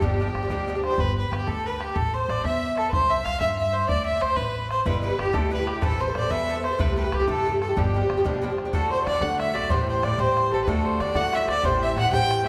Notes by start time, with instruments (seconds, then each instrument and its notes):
0.01 upright bass G1, bouzouki B2 F3 D4 G4, fiddle G4, bodhran
0.20 bouzouki B2 F3 D4 G4, bodhran
0.27 bouzouki F3 D4 G4
0.34 upright bass G1, bodhran
0.43 bouzouki F3 D4 G4
0.50 upright bass D2, bouzouki B2 F3 D4 G4, bodhran
0.67 bouzouki B2 F3 D4 G4, bodhran
0.75 bouzouki F3 D4 G4
0.84 fiddle C5, bodhran
0.91 bouzouki F3 D4 G4
0.98 upright bass G1, fiddle B4, bodhran
1.17 fiddle B4, bodhran
1.31 upright bass G1, fiddle G4, bodhran
1.46 upright bass D2, fiddle A4, bodhran
1.65 fiddle B4, bodhran
1.79 fiddle G4, bodhran
1.94 upright bass A1, fiddle A4, bodhran
2.13 fiddle C5, bodhran
2.28 upright bass A1, fiddle D5, bodhran
2.44 upright bass E2, fiddle E5, bodhran
2.62 bodhran
2.77 fiddle A4, bodhran
2.89 upright bass C2, fiddle B4 C5, bodhran
3.10 fiddle E5, bodhran
3.24 upright bass C2, fiddle F5, bodhran
3.40 upright bass G2, fiddle E5, bodhran
3.58 fiddle E5, bodhran
3.73 fiddle C5
3.88 upright bass D2, fiddle D5, bodhran
4.06 fiddle E5, bodhran
4.21 upright bass D2, fiddle C5, bodhran
4.36 upright bass A1, fiddle B4, bodhran
4.55 fiddle B4, bodhran
4.70 fiddle C5, bodhran
4.80 fiddle C5
4.86 upright bass G1, bouzouki B2 D3 E4 G4, fiddle B4, bodhran
5.02 bouzouki B2 D3 E4 G4, fiddle B4, bodhran
5.10 bouzouki D3 E4 G4
5.18 upright bass G1, fiddle G4, bodhran
5.25 bouzouki D3 E4 G4
5.33 upright bass D2, bouzouki B2 D3 E4 G4, fiddle A4, bodhran
5.50 bouzouki B2 D3 E4 G4, fiddle B4, bodhran
5.58 bouzouki D3 E4 G4
5.67 fiddle G4, bodhran
5.74 bouzouki D3 E4 G4
5.81 upright bass A1, bouzouki E3 C4 A4 B4, fiddle A4, bodhran
6.00 bouzouki E3 C4 A4 B4, fiddle C5
6.08 bouzouki C4 A4 B4
6.15 upright bass A1, fiddle D5, bodhran
6.23 bouzouki C4 A4 B4
6.30 upright bass E2, bouzouki E3 C4 A4 B4, fiddle E5, bodhran
6.48 bouzouki E3 C4 A4 B4
6.56 bouzouki C4 A4 B4
6.63 fiddle C5, bodhran
6.71 bouzouki C4 A4 B4
6.79 upright bass C2, bouzouki C3 E3 A3 G4, fiddle B4, bodhran
6.96 bouzouki C3 E3 A3 G4, fiddle B4, bodhran
7.04 bouzouki E3 A3 G4
7.12 upright bass C2, fiddle G4, bodhran
7.19 bouzouki E3 A3 G4
7.27 upright bass G2, bouzouki C3 E3 A3 G4, fiddle A4, bodhran
7.45 bouzouki C3 E3 A3 G4, bodhran
7.52 bouzouki E3 A3 G4
7.61 fiddle A4, bodhran
7.68 bouzouki E3 A3 G4
7.76 upright bass G1, bouzouki B2 F3 D4 G4, fiddle G4, bodhran
7.94 bouzouki B2 F3 D4 G4, bodhran
8.02 bouzouki F3 D4 G4
8.09 upright bass G1, bodhran
8.17 bouzouki F3 D4 G4
8.25 upright bass D2, bouzouki B2 F3 D4 G4, bodhran
8.42 bouzouki B2 F3 D4 G4, bodhran
8.50 bouzouki F3 D4 G4
8.58 bodhran
8.65 bouzouki F3 D4 G4
8.73 upright bass D2, bouzouki A2 D3 A3 F#4, fiddle A4, bodhran
8.90 fiddle C5, bodhran
9.06 bouzouki A2 D3 A3 F#4, upright bass D3, fiddle D5, bodhran
9.20 bouzouki A2 D3 A3 F#4, upright bass D3, fiddle F#5, bodhran
9.39 fiddle E5, bodhran
9.54 upright bass B1, bouzouki D3 A3 F#4, fiddle D5, bodhran
9.62 bodhran
9.70 upright bass A1, bouzouki A2 E3 C4 G4, fiddle C5, bodhran
9.87 fiddle C5, bodhran
10.03 bouzouki A2 E3 C4 G4, upright bass A2, fiddle D5, bodhran
10.18 upright bass A2, bouzouki A2 E3 C4 G4, fiddle C5, bodhran
10.37 bodhran
10.51 upright bass A1, bouzouki E3 C4 G4, fiddle A4
10.60 fiddle B4, bodhran
10.67 upright bass D2, bouzouki A2 D3 A3 F#4, fiddle A4, bodhran
10.85 fiddle C5, bodhran
11.00 bouzouki A2 D3 A3 F#4, upright bass D3, fiddle D5, bodhran
11.15 bouzouki A2 D3 A3 F#4, upright bass D3, fiddle F#5, bodhran
11.33 fiddle E5, bodhran
11.45 upright bass D2, bouzouki F#4, fiddle C5 D5, bodhran
11.49 bouzouki D3 A3, fiddle D5
11.57 bodhran
11.63 upright bass A1, bouzouki A2 E3 C4 G4, fiddle C5, bodhran
11.82 fiddle E5, bodhran
11.96 bouzouki A2 E3 C4 G4, upright bass A2, fiddle F#5, bodhran
12.12 upright bass A2, bouzouki A2 E3 C4 G4, fiddle G5, bodhran
12.31 bodhran
12.45 upright bass C#2, bouzouki G4